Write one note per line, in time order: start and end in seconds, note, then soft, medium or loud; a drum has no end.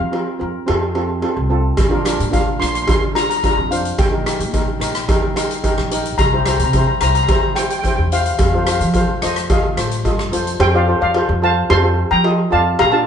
0.00 0.22 F3 medium
0.00 0.92 F5 medium
0.12 0.29 C4 medium
0.12 0.29 F4 medium
0.12 0.29 A#4 medium
0.12 cowbell medium
0.39 0.52 F2 medium
0.39 0.56 C4 medium
0.39 0.56 F4 medium
0.39 0.57 A#4 medium
0.67 1.23 F2 medium
0.67 0.84 C4 medium
0.67 0.84 F4 medium
0.67 0.84 A4 medium
0.67 cowbell medium
0.95 1.12 C4 medium
0.95 1.12 F4 medium
0.95 1.12 A4 medium
0.95 cowbell medium
1.22 1.39 C4 medium
1.22 1.39 F4 medium
1.22 1.40 A4 medium
1.22 cowbell medium
1.37 1.70 C2 medium
1.49 1.75 C4 medium
1.49 1.75 F4 medium
1.49 1.75 A4 medium
1.77 2.21 A#1 medium
1.77 kick loud
1.77 closed hi-hat medium
1.77 cowbell loud
1.89 1.99 D4 medium
1.89 1.99 F4 medium
1.89 2.00 A#4 medium
2.05 2.22 D4 medium
2.05 2.22 F4 medium
2.05 2.22 A#4 medium
2.05 cross-stick medium
2.05 closed hi-hat medium
2.05 cowbell medium
2.19 2.41 A#2 medium
2.19 closed hi-hat medium
2.31 2.49 D4 medium
2.31 2.49 F4 medium
2.31 2.49 A#4 medium
2.31 2.62 F5 medium
2.31 kick medium
2.31 closed hi-hat medium
2.31 cowbell medium
2.60 2.83 A#1 medium
2.60 2.77 D4 medium
2.60 2.77 F4 medium
2.60 2.77 A#4 medium
2.60 2.67 C6 medium
2.60 cross-stick medium
2.60 closed hi-hat medium
2.68 2.74 C6 medium
2.75 2.81 C6 medium
2.75 closed hi-hat medium
2.82 2.88 C6 medium
2.87 3.04 D4 medium
2.87 3.05 F4 medium
2.87 3.05 A#4 medium
2.87 2.96 C6 medium
2.87 kick loud
2.87 closed hi-hat medium
2.87 cowbell loud
2.98 3.05 C6 medium
3.15 3.32 D4 medium
3.15 3.32 F4 medium
3.15 3.32 A#4 medium
3.15 3.22 A#5 medium
3.15 cross-stick medium
3.15 closed hi-hat medium
3.15 cowbell medium
3.23 3.29 A#5 medium
3.30 3.36 A#5 medium
3.30 closed hi-hat medium
3.37 3.44 A#5 medium
3.43 3.60 D4 medium
3.43 3.60 F4 medium
3.43 3.61 A#4 medium
3.43 3.52 A#5 medium
3.43 kick medium
3.43 closed hi-hat soft
3.43 cowbell medium
3.53 3.90 F2 medium
3.53 3.61 A#5 medium
3.71 3.96 D4 medium
3.71 3.96 F4 medium
3.71 3.96 C5 medium
3.71 3.99 F5 medium
3.71 closed hi-hat medium
3.85 closed hi-hat medium
3.98 4.41 A#1 medium
3.98 4.78 G5 medium
3.98 kick loud
3.98 closed hi-hat medium
3.98 cowbell medium
4.11 4.20 D#4 medium
4.11 4.21 G4 medium
4.11 4.21 A#4 medium
4.26 4.43 D#4 medium
4.26 4.43 G4 medium
4.26 4.43 A#4 medium
4.26 cross-stick medium
4.26 closed hi-hat medium
4.26 cowbell medium
4.40 4.62 A#2 medium
4.40 closed hi-hat medium
4.53 4.70 D#4 medium
4.53 4.70 G4 medium
4.53 4.71 A#4 medium
4.53 kick medium
4.53 closed hi-hat medium
4.53 cowbell medium
4.80 5.02 A#1 medium
4.80 4.97 D#4 medium
4.80 4.97 G4 medium
4.80 4.98 A#4 medium
4.80 cross-stick medium
4.80 closed hi-hat medium
4.95 cross-stick medium
4.95 closed hi-hat medium
5.08 5.25 D#4 medium
5.08 5.26 G4 medium
5.08 5.26 A#4 medium
5.08 kick loud
5.08 closed hi-hat medium
5.08 cowbell loud
5.35 5.53 D#4 medium
5.35 5.53 G4 medium
5.35 5.53 A#4 medium
5.35 cross-stick medium
5.35 closed hi-hat medium
5.35 cowbell medium
5.51 closed hi-hat medium
5.63 5.80 D#4 medium
5.63 5.80 G4 medium
5.63 5.81 A#4 medium
5.63 kick medium
5.63 closed hi-hat medium
5.63 cowbell medium
5.78 6.11 A#1 medium
5.78 cross-stick medium
5.91 6.16 D#4 medium
5.91 6.16 G4 medium
5.91 6.17 A#4 medium
5.91 closed hi-hat medium
6.05 closed hi-hat medium
6.18 6.61 C2 medium
6.18 6.23 A#5 loud
6.18 kick loud
6.18 closed hi-hat medium
6.18 cowbell medium
6.25 6.32 A#5 medium
6.33 6.41 E4 medium
6.33 6.42 G4 medium
6.33 6.42 C5 medium
6.33 6.39 A#5 medium
6.40 6.46 A#5 medium
6.46 6.63 E4 medium
6.46 6.63 G4 medium
6.46 6.64 C5 medium
6.46 6.55 A#5 medium
6.46 cross-stick medium
6.46 closed hi-hat medium
6.46 cowbell medium
6.56 6.82 C3 medium
6.56 6.63 A#5 medium
6.56 closed hi-hat medium
6.64 6.70 A#5 medium
6.72 6.91 E4 medium
6.72 6.78 A#5 medium
6.72 kick medium
6.72 closed hi-hat medium
6.72 cowbell medium
6.76 6.92 G4 medium
6.76 6.92 C5 medium
6.76 6.86 A#5 medium
6.87 6.94 A#5 medium
7.00 7.23 C2 medium
7.00 7.19 E4 medium
7.00 7.19 G4 medium
7.00 7.19 C5 medium
7.00 7.07 A#5 medium
7.00 cross-stick medium
7.00 closed hi-hat medium
7.08 7.14 A#5 medium
7.15 7.22 A#5 medium
7.15 closed hi-hat medium
7.23 7.29 A#5 medium
7.28 7.46 E4 medium
7.28 7.46 G4 medium
7.28 7.47 C5 medium
7.28 7.37 A#5 medium
7.28 kick loud
7.28 closed hi-hat medium
7.28 cowbell medium
7.39 7.47 A#5 medium
7.56 7.74 E4 medium
7.56 7.74 G4 medium
7.56 7.74 C5 medium
7.56 7.63 G5 medium
7.56 cross-stick medium
7.56 closed hi-hat medium
7.56 cowbell medium
7.64 7.69 G5 medium
7.70 7.78 G5 medium
7.70 closed hi-hat medium
7.79 7.85 G5 medium
7.84 8.02 E4 medium
7.84 8.02 G4 medium
7.84 8.02 C5 medium
7.84 7.94 G5 medium
7.84 kick medium
7.84 closed hi-hat medium
7.84 cowbell medium
7.96 8.31 E2 medium
7.96 8.03 G5 medium
8.12 8.37 E4 medium
8.12 8.37 G4 medium
8.12 8.37 C5 medium
8.12 8.20 F5 medium
8.12 closed hi-hat medium
8.22 8.26 F5 medium
8.26 8.34 F5 medium
8.26 closed hi-hat medium
8.35 8.42 F5 medium
8.35 closed hi-hat medium
8.35 cowbell medium
8.39 8.82 F2 medium
8.39 8.47 F5 medium
8.39 kick loud
8.49 8.56 F5 medium
8.54 8.62 F4 medium
8.54 8.62 A4 medium
8.54 8.62 C5 medium
8.54 8.63 F5 medium
8.64 8.83 F4 medium
8.64 8.84 A4 medium
8.64 8.84 C5 medium
8.64 8.71 F5 medium
8.64 cross-stick medium
8.64 closed hi-hat medium
8.64 cowbell medium
8.72 8.77 F5 medium
8.78 9.03 F3 medium
8.78 8.86 F5 medium
8.78 closed hi-hat medium
8.94 9.11 F4 medium
8.94 9.11 A4 medium
8.94 9.12 C5 medium
8.94 9.07 F5 medium
8.94 kick medium
8.94 closed hi-hat medium
8.94 cowbell medium
9.22 9.44 F2 medium
9.22 9.39 F4 medium
9.22 9.39 A4 medium
9.22 9.39 C5 medium
9.22 9.48 D#5 medium
9.22 cross-stick medium
9.22 closed hi-hat medium
9.36 cross-stick medium
9.36 closed hi-hat medium
9.49 9.66 F4 medium
9.49 9.67 A4 medium
9.49 9.67 D#5 medium
9.49 10.29 F5 medium
9.49 kick loud
9.49 closed hi-hat medium
9.49 cowbell medium
9.77 10.02 A2 medium
9.77 9.93 F4 medium
9.77 9.94 A4 medium
9.77 9.94 C5 medium
9.77 cross-stick medium
9.77 closed hi-hat medium
9.91 closed hi-hat medium
10.05 10.30 G2 medium
10.05 10.21 F4 medium
10.05 10.22 A4 medium
10.05 10.22 D#5 medium
10.05 kick medium
10.05 closed hi-hat medium
10.05 cowbell medium
10.19 cross-stick medium
10.32 10.57 F2 medium
10.32 10.57 F4 medium
10.32 10.57 A4 medium
10.32 10.57 C5 medium
10.32 closed hi-hat medium
10.47 closed hi-hat medium
10.60 10.93 F2 medium
10.60 10.73 C5 medium
10.60 10.75 G5 loud
10.60 cowbell loud
10.74 10.82 F4 medium
10.74 10.82 A4 medium
10.74 10.82 C5 medium
10.74 11.00 D5 medium
10.74 11.01 F5 medium
10.88 11.04 F4 medium
10.88 11.04 A4 medium
10.88 11.04 C5 medium
11.01 11.23 F2 medium
11.01 11.39 D5 medium
11.01 11.40 F5 medium
11.14 11.31 F4 medium
11.14 11.31 A4 medium
11.14 11.32 C5 medium
11.14 cowbell medium
11.29 11.61 F2 medium
11.42 11.59 F4 medium
11.42 11.59 A4 medium
11.42 11.59 C5 medium
11.42 11.69 F5 medium
11.42 11.70 A5 loud
11.69 12.03 F2 loud
11.69 11.78 F4 medium
11.69 11.78 A4 medium
11.69 11.78 C5 medium
11.69 12.09 A5 medium
11.69 12.08 C6 loud
11.69 cowbell loud
11.82 12.08 F4 medium
11.82 12.08 A4 medium
11.82 12.08 C5 medium
12.11 12.44 F3 medium
12.11 12.49 G5 medium
12.11 12.53 A#5 loud
12.23 12.41 F4 medium
12.23 12.41 A4 medium
12.23 12.41 D#5 medium
12.23 cowbell medium
12.51 12.74 F2 medium
12.51 12.76 F4 medium
12.51 12.76 A4 medium
12.51 12.77 D5 medium
12.51 12.78 F5 medium
12.51 12.80 A5 loud
12.79 13.07 A#1 loud
12.79 12.91 F5 medium
12.79 12.94 A#5 loud
12.79 cowbell loud
12.92 13.01 D4 medium
12.92 13.01 F4 medium
12.92 13.01 A#4 medium
12.92 13.07 F5 medium
12.92 13.07 A5 medium